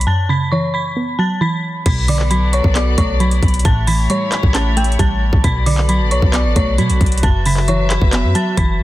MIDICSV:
0, 0, Header, 1, 6, 480
1, 0, Start_track
1, 0, Key_signature, 2, "minor"
1, 0, Tempo, 447761
1, 72, Time_signature, 4, 2, 24, 8
1, 9466, End_track
2, 0, Start_track
2, 0, Title_t, "Synth bell"
2, 0, Program_c, 0, 98
2, 73, Note_on_c, 0, 81, 87
2, 82, Note_on_c, 0, 93, 69
2, 269, Note_off_c, 0, 81, 0
2, 274, Note_off_c, 0, 93, 0
2, 314, Note_on_c, 0, 83, 83
2, 323, Note_on_c, 0, 95, 65
2, 510, Note_off_c, 0, 83, 0
2, 515, Note_off_c, 0, 95, 0
2, 553, Note_on_c, 0, 85, 81
2, 562, Note_on_c, 0, 73, 66
2, 749, Note_off_c, 0, 85, 0
2, 754, Note_off_c, 0, 73, 0
2, 791, Note_on_c, 0, 83, 84
2, 799, Note_on_c, 0, 95, 70
2, 1243, Note_off_c, 0, 83, 0
2, 1247, Note_off_c, 0, 95, 0
2, 1272, Note_on_c, 0, 81, 78
2, 1281, Note_on_c, 0, 93, 68
2, 1468, Note_off_c, 0, 81, 0
2, 1473, Note_off_c, 0, 93, 0
2, 1512, Note_on_c, 0, 83, 75
2, 1521, Note_on_c, 0, 95, 62
2, 1708, Note_off_c, 0, 83, 0
2, 1713, Note_off_c, 0, 95, 0
2, 1993, Note_on_c, 0, 83, 89
2, 2002, Note_on_c, 0, 95, 72
2, 2189, Note_off_c, 0, 83, 0
2, 2194, Note_off_c, 0, 95, 0
2, 2234, Note_on_c, 0, 86, 89
2, 2242, Note_on_c, 0, 74, 64
2, 2430, Note_off_c, 0, 86, 0
2, 2434, Note_off_c, 0, 74, 0
2, 2472, Note_on_c, 0, 83, 91
2, 2481, Note_on_c, 0, 95, 67
2, 2668, Note_off_c, 0, 83, 0
2, 2673, Note_off_c, 0, 95, 0
2, 2712, Note_on_c, 0, 85, 78
2, 2721, Note_on_c, 0, 73, 62
2, 2908, Note_off_c, 0, 85, 0
2, 2913, Note_off_c, 0, 73, 0
2, 2954, Note_on_c, 0, 86, 87
2, 2962, Note_on_c, 0, 74, 70
2, 3149, Note_off_c, 0, 86, 0
2, 3154, Note_off_c, 0, 74, 0
2, 3193, Note_on_c, 0, 85, 102
2, 3201, Note_on_c, 0, 73, 71
2, 3389, Note_off_c, 0, 85, 0
2, 3394, Note_off_c, 0, 73, 0
2, 3431, Note_on_c, 0, 83, 77
2, 3440, Note_on_c, 0, 95, 61
2, 3883, Note_off_c, 0, 83, 0
2, 3888, Note_off_c, 0, 95, 0
2, 3914, Note_on_c, 0, 81, 102
2, 3922, Note_on_c, 0, 93, 67
2, 4109, Note_off_c, 0, 81, 0
2, 4114, Note_off_c, 0, 93, 0
2, 4151, Note_on_c, 0, 83, 83
2, 4160, Note_on_c, 0, 95, 65
2, 4348, Note_off_c, 0, 83, 0
2, 4353, Note_off_c, 0, 95, 0
2, 4394, Note_on_c, 0, 85, 88
2, 4402, Note_on_c, 0, 73, 69
2, 4589, Note_off_c, 0, 85, 0
2, 4594, Note_off_c, 0, 73, 0
2, 4632, Note_on_c, 0, 83, 81
2, 4640, Note_on_c, 0, 95, 66
2, 4828, Note_off_c, 0, 83, 0
2, 4833, Note_off_c, 0, 95, 0
2, 4873, Note_on_c, 0, 81, 95
2, 4881, Note_on_c, 0, 93, 70
2, 5069, Note_off_c, 0, 81, 0
2, 5074, Note_off_c, 0, 93, 0
2, 5111, Note_on_c, 0, 79, 79
2, 5120, Note_on_c, 0, 91, 66
2, 5308, Note_off_c, 0, 79, 0
2, 5313, Note_off_c, 0, 91, 0
2, 5353, Note_on_c, 0, 81, 91
2, 5361, Note_on_c, 0, 93, 69
2, 5804, Note_off_c, 0, 81, 0
2, 5808, Note_off_c, 0, 93, 0
2, 5831, Note_on_c, 0, 83, 89
2, 5840, Note_on_c, 0, 95, 68
2, 6028, Note_off_c, 0, 83, 0
2, 6033, Note_off_c, 0, 95, 0
2, 6070, Note_on_c, 0, 86, 77
2, 6078, Note_on_c, 0, 74, 59
2, 6267, Note_off_c, 0, 86, 0
2, 6272, Note_off_c, 0, 74, 0
2, 6312, Note_on_c, 0, 83, 78
2, 6321, Note_on_c, 0, 95, 64
2, 6508, Note_off_c, 0, 83, 0
2, 6514, Note_off_c, 0, 95, 0
2, 6551, Note_on_c, 0, 85, 77
2, 6560, Note_on_c, 0, 73, 60
2, 6748, Note_off_c, 0, 85, 0
2, 6753, Note_off_c, 0, 73, 0
2, 6790, Note_on_c, 0, 86, 89
2, 6798, Note_on_c, 0, 74, 76
2, 6987, Note_off_c, 0, 86, 0
2, 6992, Note_off_c, 0, 74, 0
2, 7034, Note_on_c, 0, 85, 89
2, 7043, Note_on_c, 0, 73, 73
2, 7230, Note_off_c, 0, 85, 0
2, 7235, Note_off_c, 0, 73, 0
2, 7272, Note_on_c, 0, 83, 79
2, 7280, Note_on_c, 0, 95, 67
2, 7723, Note_off_c, 0, 83, 0
2, 7727, Note_off_c, 0, 95, 0
2, 7753, Note_on_c, 0, 81, 88
2, 7762, Note_on_c, 0, 93, 67
2, 7949, Note_off_c, 0, 81, 0
2, 7954, Note_off_c, 0, 93, 0
2, 7995, Note_on_c, 0, 83, 82
2, 8004, Note_on_c, 0, 95, 66
2, 8190, Note_off_c, 0, 83, 0
2, 8195, Note_off_c, 0, 95, 0
2, 8234, Note_on_c, 0, 85, 85
2, 8243, Note_on_c, 0, 73, 70
2, 8429, Note_off_c, 0, 85, 0
2, 8434, Note_off_c, 0, 73, 0
2, 8471, Note_on_c, 0, 83, 89
2, 8480, Note_on_c, 0, 95, 72
2, 8923, Note_off_c, 0, 83, 0
2, 8928, Note_off_c, 0, 95, 0
2, 8951, Note_on_c, 0, 81, 78
2, 8960, Note_on_c, 0, 93, 70
2, 9148, Note_off_c, 0, 81, 0
2, 9153, Note_off_c, 0, 93, 0
2, 9192, Note_on_c, 0, 83, 77
2, 9201, Note_on_c, 0, 95, 64
2, 9388, Note_off_c, 0, 83, 0
2, 9394, Note_off_c, 0, 95, 0
2, 9466, End_track
3, 0, Start_track
3, 0, Title_t, "String section"
3, 0, Program_c, 1, 48
3, 1993, Note_on_c, 1, 59, 91
3, 1993, Note_on_c, 1, 66, 79
3, 1993, Note_on_c, 1, 69, 81
3, 1993, Note_on_c, 1, 74, 100
3, 3893, Note_off_c, 1, 59, 0
3, 3893, Note_off_c, 1, 69, 0
3, 3893, Note_off_c, 1, 74, 0
3, 3894, Note_off_c, 1, 66, 0
3, 3913, Note_on_c, 1, 57, 85
3, 3913, Note_on_c, 1, 64, 82
3, 3913, Note_on_c, 1, 67, 77
3, 3913, Note_on_c, 1, 73, 97
3, 5813, Note_off_c, 1, 57, 0
3, 5813, Note_off_c, 1, 64, 0
3, 5813, Note_off_c, 1, 67, 0
3, 5813, Note_off_c, 1, 73, 0
3, 5832, Note_on_c, 1, 74, 93
3, 5833, Note_on_c, 1, 59, 87
3, 5833, Note_on_c, 1, 66, 78
3, 5833, Note_on_c, 1, 69, 84
3, 7733, Note_off_c, 1, 69, 0
3, 7733, Note_off_c, 1, 74, 0
3, 7734, Note_off_c, 1, 59, 0
3, 7752, Note_on_c, 1, 54, 87
3, 7752, Note_on_c, 1, 71, 79
3, 7752, Note_on_c, 1, 76, 100
3, 9466, Note_off_c, 1, 54, 0
3, 9466, Note_off_c, 1, 66, 0
3, 9466, Note_off_c, 1, 71, 0
3, 9466, Note_off_c, 1, 76, 0
3, 9466, End_track
4, 0, Start_track
4, 0, Title_t, "Synth pluck"
4, 0, Program_c, 2, 84
4, 71, Note_on_c, 2, 42, 96
4, 312, Note_on_c, 2, 49, 78
4, 556, Note_on_c, 2, 52, 83
4, 1033, Note_on_c, 2, 59, 83
4, 1271, Note_on_c, 2, 54, 85
4, 1272, Note_off_c, 2, 42, 0
4, 1497, Note_off_c, 2, 52, 0
4, 1510, Note_on_c, 2, 52, 101
4, 1512, Note_off_c, 2, 49, 0
4, 1991, Note_off_c, 2, 52, 0
4, 1992, Note_off_c, 2, 54, 0
4, 1993, Note_off_c, 2, 59, 0
4, 1993, Note_on_c, 2, 47, 93
4, 2233, Note_on_c, 2, 50, 78
4, 2474, Note_on_c, 2, 54, 85
4, 2952, Note_on_c, 2, 59, 88
4, 3190, Note_on_c, 2, 57, 84
4, 3192, Note_off_c, 2, 47, 0
4, 3418, Note_off_c, 2, 54, 0
4, 3431, Note_on_c, 2, 54, 99
4, 3432, Note_off_c, 2, 50, 0
4, 3911, Note_off_c, 2, 57, 0
4, 3912, Note_off_c, 2, 54, 0
4, 3912, Note_off_c, 2, 59, 0
4, 3914, Note_on_c, 2, 45, 91
4, 4153, Note_on_c, 2, 52, 82
4, 4393, Note_on_c, 2, 55, 80
4, 4872, Note_on_c, 2, 61, 85
4, 5109, Note_on_c, 2, 57, 83
4, 5113, Note_off_c, 2, 45, 0
4, 5339, Note_off_c, 2, 55, 0
4, 5352, Note_off_c, 2, 52, 0
4, 5352, Note_on_c, 2, 55, 99
4, 5828, Note_on_c, 2, 47, 93
4, 5831, Note_off_c, 2, 57, 0
4, 5832, Note_off_c, 2, 55, 0
4, 5832, Note_off_c, 2, 61, 0
4, 6071, Note_on_c, 2, 50, 81
4, 6312, Note_on_c, 2, 54, 81
4, 6792, Note_on_c, 2, 59, 91
4, 7030, Note_off_c, 2, 47, 0
4, 7032, Note_on_c, 2, 57, 89
4, 7258, Note_off_c, 2, 54, 0
4, 7271, Note_on_c, 2, 54, 90
4, 7272, Note_off_c, 2, 50, 0
4, 7751, Note_off_c, 2, 54, 0
4, 7751, Note_on_c, 2, 42, 98
4, 7752, Note_off_c, 2, 57, 0
4, 7752, Note_off_c, 2, 59, 0
4, 7992, Note_on_c, 2, 49, 79
4, 8235, Note_on_c, 2, 52, 85
4, 8713, Note_on_c, 2, 59, 86
4, 8951, Note_on_c, 2, 54, 87
4, 8952, Note_off_c, 2, 42, 0
4, 9176, Note_off_c, 2, 52, 0
4, 9189, Note_on_c, 2, 52, 108
4, 9192, Note_off_c, 2, 49, 0
4, 9466, Note_off_c, 2, 52, 0
4, 9466, Note_off_c, 2, 54, 0
4, 9466, Note_off_c, 2, 59, 0
4, 9466, End_track
5, 0, Start_track
5, 0, Title_t, "808-style bass"
5, 0, Program_c, 3, 38
5, 1992, Note_on_c, 3, 35, 113
5, 2799, Note_off_c, 3, 35, 0
5, 2832, Note_on_c, 3, 35, 104
5, 3178, Note_off_c, 3, 35, 0
5, 3193, Note_on_c, 3, 35, 107
5, 3653, Note_off_c, 3, 35, 0
5, 3672, Note_on_c, 3, 35, 103
5, 3902, Note_off_c, 3, 35, 0
5, 3913, Note_on_c, 3, 33, 114
5, 4373, Note_off_c, 3, 33, 0
5, 4752, Note_on_c, 3, 33, 106
5, 5328, Note_off_c, 3, 33, 0
5, 5351, Note_on_c, 3, 33, 107
5, 5697, Note_off_c, 3, 33, 0
5, 5711, Note_on_c, 3, 33, 107
5, 5827, Note_off_c, 3, 33, 0
5, 5832, Note_on_c, 3, 35, 105
5, 6432, Note_on_c, 3, 33, 100
5, 6448, Note_off_c, 3, 35, 0
5, 6552, Note_on_c, 3, 35, 102
5, 6568, Note_off_c, 3, 33, 0
5, 6666, Note_off_c, 3, 35, 0
5, 6671, Note_on_c, 3, 35, 105
5, 6912, Note_on_c, 3, 33, 104
5, 6928, Note_off_c, 3, 35, 0
5, 7026, Note_off_c, 3, 33, 0
5, 7033, Note_on_c, 3, 35, 112
5, 7272, Note_on_c, 3, 47, 99
5, 7288, Note_off_c, 3, 35, 0
5, 7392, Note_on_c, 3, 35, 103
5, 7408, Note_off_c, 3, 47, 0
5, 7506, Note_off_c, 3, 35, 0
5, 7512, Note_on_c, 3, 35, 106
5, 7742, Note_off_c, 3, 35, 0
5, 7752, Note_on_c, 3, 30, 116
5, 8559, Note_off_c, 3, 30, 0
5, 8592, Note_on_c, 3, 30, 110
5, 8832, Note_on_c, 3, 42, 101
5, 8848, Note_off_c, 3, 30, 0
5, 8946, Note_off_c, 3, 42, 0
5, 9191, Note_on_c, 3, 30, 106
5, 9432, Note_on_c, 3, 42, 96
5, 9448, Note_off_c, 3, 30, 0
5, 9466, Note_off_c, 3, 42, 0
5, 9466, End_track
6, 0, Start_track
6, 0, Title_t, "Drums"
6, 12, Note_on_c, 9, 42, 80
6, 119, Note_off_c, 9, 42, 0
6, 1992, Note_on_c, 9, 36, 115
6, 1992, Note_on_c, 9, 42, 77
6, 1992, Note_on_c, 9, 49, 102
6, 2099, Note_off_c, 9, 42, 0
6, 2099, Note_off_c, 9, 49, 0
6, 2100, Note_off_c, 9, 36, 0
6, 2232, Note_on_c, 9, 46, 84
6, 2340, Note_off_c, 9, 46, 0
6, 2353, Note_on_c, 9, 39, 69
6, 2460, Note_off_c, 9, 39, 0
6, 2472, Note_on_c, 9, 42, 79
6, 2580, Note_off_c, 9, 42, 0
6, 2712, Note_on_c, 9, 42, 75
6, 2820, Note_off_c, 9, 42, 0
6, 2832, Note_on_c, 9, 36, 94
6, 2939, Note_off_c, 9, 36, 0
6, 2953, Note_on_c, 9, 39, 121
6, 2953, Note_on_c, 9, 42, 89
6, 3060, Note_off_c, 9, 39, 0
6, 3060, Note_off_c, 9, 42, 0
6, 3193, Note_on_c, 9, 36, 94
6, 3193, Note_on_c, 9, 42, 86
6, 3300, Note_off_c, 9, 36, 0
6, 3300, Note_off_c, 9, 42, 0
6, 3433, Note_on_c, 9, 42, 62
6, 3540, Note_off_c, 9, 42, 0
6, 3553, Note_on_c, 9, 42, 60
6, 3660, Note_off_c, 9, 42, 0
6, 3672, Note_on_c, 9, 36, 95
6, 3673, Note_on_c, 9, 42, 49
6, 3733, Note_off_c, 9, 42, 0
6, 3733, Note_on_c, 9, 42, 58
6, 3779, Note_off_c, 9, 36, 0
6, 3793, Note_off_c, 9, 42, 0
6, 3793, Note_on_c, 9, 42, 72
6, 3853, Note_off_c, 9, 42, 0
6, 3853, Note_on_c, 9, 42, 81
6, 3912, Note_off_c, 9, 42, 0
6, 3912, Note_on_c, 9, 42, 78
6, 3913, Note_on_c, 9, 36, 116
6, 4020, Note_off_c, 9, 36, 0
6, 4020, Note_off_c, 9, 42, 0
6, 4153, Note_on_c, 9, 46, 87
6, 4260, Note_off_c, 9, 46, 0
6, 4393, Note_on_c, 9, 42, 80
6, 4500, Note_off_c, 9, 42, 0
6, 4633, Note_on_c, 9, 39, 99
6, 4633, Note_on_c, 9, 42, 72
6, 4740, Note_off_c, 9, 39, 0
6, 4740, Note_off_c, 9, 42, 0
6, 4752, Note_on_c, 9, 36, 94
6, 4859, Note_off_c, 9, 36, 0
6, 4873, Note_on_c, 9, 39, 121
6, 4873, Note_on_c, 9, 42, 88
6, 4980, Note_off_c, 9, 39, 0
6, 4980, Note_off_c, 9, 42, 0
6, 5113, Note_on_c, 9, 42, 80
6, 5193, Note_off_c, 9, 42, 0
6, 5193, Note_on_c, 9, 42, 65
6, 5273, Note_off_c, 9, 42, 0
6, 5273, Note_on_c, 9, 42, 48
6, 5351, Note_on_c, 9, 36, 100
6, 5352, Note_off_c, 9, 42, 0
6, 5352, Note_on_c, 9, 42, 84
6, 5459, Note_off_c, 9, 36, 0
6, 5459, Note_off_c, 9, 42, 0
6, 5711, Note_on_c, 9, 36, 104
6, 5818, Note_off_c, 9, 36, 0
6, 5832, Note_on_c, 9, 36, 120
6, 5832, Note_on_c, 9, 42, 80
6, 5939, Note_off_c, 9, 36, 0
6, 5939, Note_off_c, 9, 42, 0
6, 6072, Note_on_c, 9, 46, 82
6, 6179, Note_off_c, 9, 46, 0
6, 6193, Note_on_c, 9, 39, 71
6, 6300, Note_off_c, 9, 39, 0
6, 6312, Note_on_c, 9, 42, 80
6, 6419, Note_off_c, 9, 42, 0
6, 6552, Note_on_c, 9, 42, 75
6, 6659, Note_off_c, 9, 42, 0
6, 6672, Note_on_c, 9, 36, 93
6, 6779, Note_off_c, 9, 36, 0
6, 6792, Note_on_c, 9, 39, 118
6, 6792, Note_on_c, 9, 42, 89
6, 6899, Note_off_c, 9, 39, 0
6, 6899, Note_off_c, 9, 42, 0
6, 7032, Note_on_c, 9, 36, 93
6, 7032, Note_on_c, 9, 42, 85
6, 7139, Note_off_c, 9, 42, 0
6, 7140, Note_off_c, 9, 36, 0
6, 7272, Note_on_c, 9, 42, 63
6, 7379, Note_off_c, 9, 42, 0
6, 7392, Note_on_c, 9, 42, 63
6, 7499, Note_off_c, 9, 42, 0
6, 7512, Note_on_c, 9, 36, 93
6, 7512, Note_on_c, 9, 42, 49
6, 7572, Note_off_c, 9, 42, 0
6, 7572, Note_on_c, 9, 42, 59
6, 7619, Note_off_c, 9, 36, 0
6, 7632, Note_off_c, 9, 42, 0
6, 7632, Note_on_c, 9, 42, 69
6, 7692, Note_off_c, 9, 42, 0
6, 7692, Note_on_c, 9, 42, 82
6, 7752, Note_off_c, 9, 42, 0
6, 7752, Note_on_c, 9, 36, 114
6, 7752, Note_on_c, 9, 42, 81
6, 7859, Note_off_c, 9, 36, 0
6, 7859, Note_off_c, 9, 42, 0
6, 7992, Note_on_c, 9, 46, 86
6, 8099, Note_off_c, 9, 46, 0
6, 8113, Note_on_c, 9, 39, 73
6, 8220, Note_off_c, 9, 39, 0
6, 8232, Note_on_c, 9, 42, 78
6, 8340, Note_off_c, 9, 42, 0
6, 8472, Note_on_c, 9, 39, 101
6, 8472, Note_on_c, 9, 42, 75
6, 8580, Note_off_c, 9, 39, 0
6, 8580, Note_off_c, 9, 42, 0
6, 8592, Note_on_c, 9, 36, 92
6, 8699, Note_off_c, 9, 36, 0
6, 8712, Note_on_c, 9, 42, 89
6, 8713, Note_on_c, 9, 39, 121
6, 8820, Note_off_c, 9, 39, 0
6, 8820, Note_off_c, 9, 42, 0
6, 8952, Note_on_c, 9, 42, 79
6, 9059, Note_off_c, 9, 42, 0
6, 9191, Note_on_c, 9, 36, 101
6, 9192, Note_on_c, 9, 42, 82
6, 9299, Note_off_c, 9, 36, 0
6, 9299, Note_off_c, 9, 42, 0
6, 9466, End_track
0, 0, End_of_file